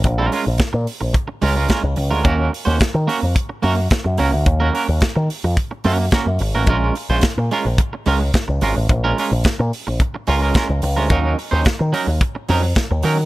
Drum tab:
HH |xoxoxoxo|xoxoxoxo|xoxoxoxo|xoxoxoxo|
SD |--o---o-|--o---o-|--o---o-|--o---o-|
BD |o-o-o-o-|o-o-o-o-|o-o-o-o-|o-o-o-o-|

HH |xoxoxoxo|xoxoxoxo|
SD |--o---o-|--o---o-|
BD |o-o-o-o-|o-o-o-o-|